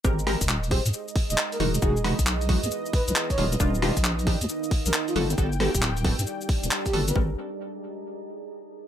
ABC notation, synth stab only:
X:1
M:4/4
L:1/8
Q:"Swing 16ths" 1/4=135
K:Gphr
V:1 name="Synth stab"
[A,CGB] [A,CGB] z [A,CGc] z3 [=E,^G,^D^F] | [=E,^G,^D^F] [E,G,DF] z [E,G,DF] z3 [_E,=G,=D=F] | [E,G,DF] [E,G,DF] z [E,G,DG] z3 [G,=B,^F=A] | [G,=B,^F=A] [G,B,FA] z [G,B,FA] z3 [G,B,FA] |
[A,CGB] z6 z |]